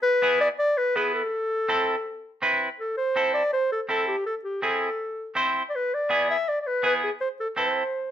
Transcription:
0.02 clarinet B4
0.22 clean electric guitar B3 E4 G#4
0.41 clarinet D5
0.59 clarinet D5
0.77 clarinet B4
0.96 clean electric guitar B3 E4 B4, clarinet G#4
1.14 clarinet A4
1.69 clean electric guitar C4 E4 A4
2.42 clean electric guitar C4 E4 B4
2.79 clarinet A4
2.97 clarinet C5
3.16 clean electric guitar C4 E4 A4
3.34 clarinet D5
3.53 clarinet C5
3.72 clarinet A4
3.89 clean electric guitar C4 E4 A4, clarinet A4
4.08 clarinet G4
4.26 clarinet A4
4.44 clarinet G4
4.62 clean electric guitar C4 E4 G#4, clarinet A4
5.35 clean electric guitar C4 E4 C5
5.70 clarinet D5
5.75 clarinet B4
5.94 clarinet D5
6.10 clean electric guitar B3 E4 G#4
6.30 clarinet E5
6.49 clarinet D5
6.61 clarinet D5
6.67 clarinet B4
6.83 clean electric guitar B3 E4 G#4, clarinet B4
7.04 clarinet G#4
7.21 clarinet C5
7.40 clarinet A4
7.57 clean electric guitar C4 E4 A4, clarinet C5

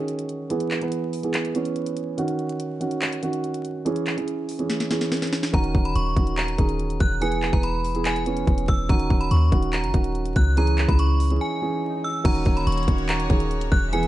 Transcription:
Already playing: grand piano D#3 C#4 F#4 G#4
0.08 closed hi-hat
0.19 closed hi-hat
0.29 closed hi-hat
0.50 grand piano E3 B3 G#4, closed hi-hat
0.60 closed hi-hat
0.71 clap, closed hi-hat
0.81 grand piano E3 B3 B4, closed hi-hat
0.92 closed hi-hat
1.13 open hi-hat
1.23 grand piano E3 B3 G#4, closed hi-hat
1.34 clap, closed hi-hat
1.45 closed hi-hat
1.54 grand piano E3 B3 C#4, closed hi-hat
1.65 closed hi-hat
1.76 closed hi-hat
1.86 closed hi-hat
1.97 closed hi-hat
2.17 grand piano D#3 C#4 F#4, closed hi-hat
2.28 closed hi-hat
2.39 closed hi-hat
2.49 closed hi-hat
2.60 closed hi-hat
2.80 grand piano D#3 C#4 F#4, closed hi-hat
2.91 closed hi-hat
3.02 clap, closed hi-hat
3.13 closed hi-hat
3.22 grand piano D#3 C#4 F#4, closed hi-hat
3.33 closed hi-hat
3.44 closed hi-hat
3.54 closed hi-hat
3.65 closed hi-hat
3.85 grand piano E3 C#4 G#4, closed hi-hat
3.96 closed hi-hat
4.06 clap, closed hi-hat
4.17 grand piano E3 C#4 G#4, closed hi-hat
4.28 closed hi-hat
4.49 open hi-hat
4.59 grand piano E3 C#4 G#4, closed hi-hat
4.70 snare, closed hi-hat
4.80 snare, closed hi-hat
4.90 grand piano E3 C#4 G#4, snare, closed hi-hat
5.01 snare, closed hi-hat
5.12 snare, closed hi-hat
5.17 closed hi-hat
5.22 snare, closed hi-hat
5.27 closed hi-hat
5.33 snare, closed hi-hat
5.43 snare, closed hi-hat
5.53 808-style bass D#1, grand piano D#3 C#4 F#4, synth bell A#5, kick, closed hi-hat
5.64 closed hi-hat
5.75 808-style bass D#1, kick, closed hi-hat
5.85 synth bell B5, closed hi-hat
5.95 808-style bass D#1, synth bell C#6, closed hi-hat
6.16 808-style bass D#1, grand piano D#3 C#4 F#4, kick, closed hi-hat
6.27 closed hi-hat
6.37 synth bell A#5, clap, closed hi-hat
6.48 closed hi-hat
6.58 808-style bass D#1, grand piano D#3 C#4 G#4, kick, closed hi-hat
6.69 closed hi-hat
6.79 closed hi-hat
6.90 closed hi-hat
7.00 808-style bass E1, synth bell F#6, kick, closed hi-hat
7.21 grand piano E3 B3 G#4, synth bell G#5, closed hi-hat
7.32 closed hi-hat
7.42 clap, closed hi-hat
7.53 808-style bass E1, grand piano E3 B3 B4, synth bell A#5, kick, closed hi-hat
7.63 synth bell B5, closed hi-hat
7.84 open hi-hat
7.95 grand piano E3 B3 G#4, closed hi-hat
8.05 synth bell G#5, clap, closed hi-hat
8.16 closed hi-hat
8.26 grand piano E3 B3 C#4, closed hi-hat
8.37 closed hi-hat
8.47 808-style bass E1, kick, closed hi-hat
8.58 closed hi-hat
8.68 808-style bass E1, synth bell E6, kick, closed hi-hat
8.89 808-style bass D#1, grand piano D#3 C#4 F#4, synth bell A#5, kick, closed hi-hat, swell
8.99 closed hi-hat
9.10 808-style bass D#1, kick, closed hi-hat
9.21 synth bell B5, closed hi-hat
9.31 808-style bass D#2, synth bell C#6, closed hi-hat
9.51 808-style bass D#1, grand piano D#3 C#4 F#4, kick, closed hi-hat
9.62 closed hi-hat
9.73 synth bell A#5, clap, closed hi-hat
9.84 808-style bass F#1, closed hi-hat
9.93 808-style bass D#1, grand piano D#3 C#4 F#4, kick, closed hi-hat
10.04 closed hi-hat
10.15 closed hi-hat
10.26 closed hi-hat
10.36 808-style bass C#2, synth bell F#6, kick, closed hi-hat
10.56 grand piano E3 C#4 G#4, synth bell A#5, closed hi-hat
10.67 closed hi-hat
10.78 clap, closed hi-hat
10.88 808-style bass C#2, grand piano E3 C#4 G#4, synth bell B5, kick, closed hi-hat
10.99 synth bell C#6, closed hi-hat
11.20 open hi-hat
11.30 grand piano E3 C#4 G#4, closed hi-hat
11.41 synth bell G#5
11.61 grand piano E3 C#4 G#4
12.04 synth bell E6
12.24 808-style bass D#1, grand piano D#3 C#4 F#4, string section D#3 A#3 F#4 C#5, synth bell A#5, kick, closed hi-hat, crash
12.35 closed hi-hat
12.45 808-style bass D#1, kick, closed hi-hat
12.57 synth bell B5, closed hi-hat
12.67 808-style bass D#1, synth bell C#6, closed hi-hat
12.72 closed hi-hat
12.77 closed hi-hat
12.83 closed hi-hat
12.87 808-style bass D#1, grand piano D#3 C#4 F#4, kick, closed hi-hat
12.98 closed hi-hat
13.09 synth bell A#5, clap, closed hi-hat
13.20 closed hi-hat
13.29 808-style bass D#1, grand piano D#3 C#4 G#4, kick, closed hi-hat
13.40 closed hi-hat
13.51 closed hi-hat
13.61 closed hi-hat
13.72 808-style bass E1, synth bell F#6, kick
13.92 grand piano E3 B3 G#4, string section E3 B3 G#4 E5, synth bell G#5, closed hi-hat
14.03 closed hi-hat

